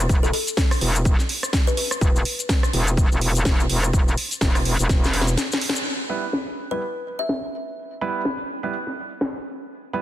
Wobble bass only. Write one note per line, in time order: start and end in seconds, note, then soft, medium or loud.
0.09 0.32 E1 medium
0.81 1.17 E1 loud
2.01 2.24 E1 loud
2.73 3.09 E1 loud
3.11 3.44 E1 loud
3.45 3.68 E1 loud
3.69 3.92 E1 medium
3.93 4.16 E1 medium
4.41 4.77 E1 loud
4.79 4.88 E1 loud
4.89 5.36 E1 loud